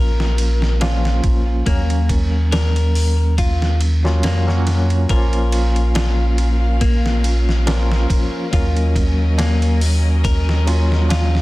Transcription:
Already playing: A#1 F3 A#3 C#4 F4 A#4
0.20 snare
0.38 ride
0.62 snare
0.80 F3 A#3 C#4 F4, snare, ride, tabla na
1.05 snare
1.24 A#1, kick, ride
1.65 D#2 F#3 A#3 C#4 A#4, kick, ride
1.90 ride
2.09 kick, ride
2.52 A#4, snare, ride, tabla na
2.76 ride
2.95 open hi-hat
3.38 F4, kick, ride
3.62 snare
3.81 ride
4.04 F#3 A#3 C#4 F4, snare
4.23 F2 A#3, snare, ride, tabla na
4.47 F#3 A#3 C#4 F#4, snare
4.67 snare, ride
4.90 ride
5.09 A#1 F3 A#3 C#4 F4 A#4 F5, kick, ride
5.33 ride
5.52 ride
5.76 ride
5.95 F4, snare, ride, tabla na
6.38 ride
6.81 A#3, kick, ride
7.06 snare
7.24 ride
7.49 snare
7.66 F3 A#3 C#4 F4 A#4, snare, ride, tabla na
7.92 snare
8.10 kick, ride
8.51 D#2 F#3 A#3 C#4 F4 A#4 D#5, kick, ride
8.77 ride
8.96 kick, ride
9.38 A#3, snare, ride, tabla na
9.62 ride
9.81 open hi-hat
10.24 A#4, kick, ride
10.49 snare
10.66 F#3 A#3 C#4 F4, ride
10.92 snare
11.09 F4, snare, ride, tabla na
11.35 snare

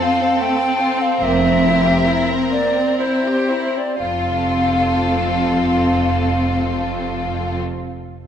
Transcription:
Already playing: C4 A4
0.01 F4 F5
0.21 C4
0.38 A3 G5
0.58 C4
0.78 F4
0.98 C4 F5
1.21 F1 F2 A#3 A#4 E5
1.42 C4
1.63 E4
1.85 G4
2.06 E4
2.29 C4
2.52 A#3 D5
2.76 C4
2.99 E4 C5
3.24 G4
3.50 E4
3.76 C4 D5
3.98 F1 F2 C4 F4 A4 F5

